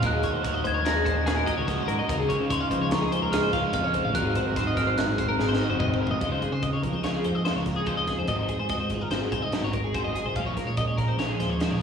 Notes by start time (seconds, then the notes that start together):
0.02 D#2 D#3 A#3 D#4 F#4 A#4, kick, closed hi-hat
0.06 F#6
0.14 G#4
0.23 F#4 C#5, kick, closed hi-hat
0.33 D#2 C5
0.43 F#4 C#5, kick, closed hi-hat
0.54 D#5
0.64 D#2 A#3 C#4 C5 G#6, kick, closed hi-hat
0.74 C#5
0.85 D#2 F#4 A#4 A#6, snare, closed hi-hat
0.95 G#4
1.05 C#4 C5, kick, closed hi-hat
1.16 D#2 A#4
1.26 D#2 A#2 F#4 G#4, snare, closed hi-hat
1.36 A#4
1.46 D#3 A#3 C#4 D#4 F#4 D#5, kick, closed hi-hat
1.57 C#2 C#5
1.67 D#3 F#4 D#5, kick, snare, closed hi-hat
1.78 C5
1.88 G#2 F#4 A#4, closed hi-hat
1.99 D#5
2.08 C#2 C#3 G#3 C4 C#4 F4 A#4, kick, closed hi-hat
2.19 D#4 G#4
2.29 F4 C#5, kick, closed hi-hat
2.40 C#3 C5
2.50 D#4 C#5 C6, kick, closed hi-hat
2.61 F5
2.71 C#3 F3 A#3 C5, kick, closed hi-hat
2.81 C#5
2.91 C#2 D#4 A#4 C#6, snare, closed hi-hat
3.02 G#4
3.12 A#3 C5, closed hi-hat
3.22 C#2 A#4
3.33 G#2 D#4 G#4 F6, snare, closed hi-hat
3.43 C5
3.51 C#2 C#3 G#3 A#3 C#4 F4 F5, kick, snare, closed hi-hat
3.64 C#5
3.73 F2 C#3 D#4 F5 F6, kick, closed hi-hat
3.84 C#5
3.94 F4 C5, kick, closed hi-hat
4.04 A1 F5
4.14 G#1 G#2 D#3 F#3 C4 D#4 F#4 A#4 F#6, kick, closed hi-hat
4.25 G#4
4.35 F#4 C5, kick, closed hi-hat
4.46 G#1 A#4
4.56 D#4 C5, kick, snare, closed hi-hat
4.67 D#5
4.77 G#1 D#3 C4 A#4 F6, kick, snare, closed hi-hat
4.87 C5
4.97 G#1 D#4 A#4 F#6, snare, closed hi-hat
5.08 G#4
5.18 C4 C5, kick, closed hi-hat
5.28 G#1 A#4
5.39 G#1 G#2 D#4 G#4, snare
5.49 C5
5.53 snare
5.59 G#2 D#3 F#3 C4 F#4 D#5
5.69 F#1 C5
5.80 A#2 D#5, kick, mid tom
5.90 C5, kick
6.01 F#1 C3 A#4
6.07 floor tom
6.11 D#5
6.21 C#2 C#3 G#3 C#4 D#4 F4 D#5, kick, closed hi-hat
6.32 C5
6.42 C4 G#4, muted overdriven electric guitar stroke, kick, closed hi-hat
6.52 C#3 C5
6.63 D#4 D#5, muted overdriven electric guitar stroke, kick, closed hi-hat
6.73 C#5
6.83 C#2 F3 G#4 A#4, muted overdriven electric guitar stroke, kick, closed hi-hat
6.93 C5
7.04 C#2 C#3 G#3 C4 C#4 F4 C#5, snare, closed hi-hat
7.14 G#4
7.24 F2 G#2 D#4 C5, muted overdriven electric guitar stroke, closed hi-hat
7.35 D#5
7.45 C#3 G#3 C4 C#4 F4 C5, snare, closed hi-hat
7.56 C#2 C#5
7.66 C4 A#4, muted overdriven electric guitar stroke, kick, snare, closed hi-hat
7.76 D#4 G#4
7.86 C#3 G#3 C#4 D#4 F4 C5, kick, closed hi-hat
7.97 D#5
8.07 C4 G#4, muted overdriven electric guitar stroke, kick, snare, closed hi-hat
8.18 F2 C5
8.28 G#1 G#2 D#3 F#3 C4 F#4 D#5, kick, closed hi-hat
8.39 D#4 C5
8.49 C4 G#4, muted overdriven electric guitar stroke, kick, closed hi-hat
8.59 G#2 C5
8.69 C4 D#5, muted overdriven electric guitar stroke, kick, snare, closed hi-hat
8.80 D#4 C5
8.90 G#1 D#3 G#4, muted overdriven electric guitar stroke, kick, closed hi-hat
8.94 F4
9.01 A#4
9.11 G#1 D#3 F#3 C4 F#4 C5, snare, closed hi-hat
9.15 C4
9.21 G#4
9.32 C2 G#2 C4 C5, muted overdriven electric guitar stroke, kick, closed hi-hat
9.42 D#4 D#5
9.52 D#3 F#3 C4 F#4 C5, snare, closed hi-hat
9.63 G#1 C#5
9.73 C4 A#4, muted overdriven electric guitar stroke, kick, closed hi-hat
9.84 D#4 G#4
9.94 F#2 D#3 F#3 C4 F#4 C5, kick, closed hi-hat
10.04 D#5
10.15 G#2 G#4, muted overdriven electric guitar stroke, closed hi-hat
10.25 C2 C5
10.35 A#1 A#2 F3 A#3 C#4 F4 F5, kick, closed hi-hat
10.46 C#5
10.56 G#3 A#4, muted overdriven electric guitar stroke, kick, snare, closed hi-hat
10.67 A#2 C#5
10.77 C#4 D#5, muted overdriven electric guitar stroke, kick, closed hi-hat
10.87 C#5
10.97 A#1 F3 G#4 A#4, muted overdriven electric guitar stroke, kick, snare, closed hi-hat
11.08 C5
11.19 A#1 F3 G#3 A#3 C#4 F4 C#5, snare, closed hi-hat
11.29 G#4
11.40 D#2 F2 C#4 C5, muted overdriven electric guitar stroke, snare, closed hi-hat
11.50 C#5
11.60 F3 G#3 A#3 C#4 F4 C5, snare, closed hi-hat
11.71 A#1 C#5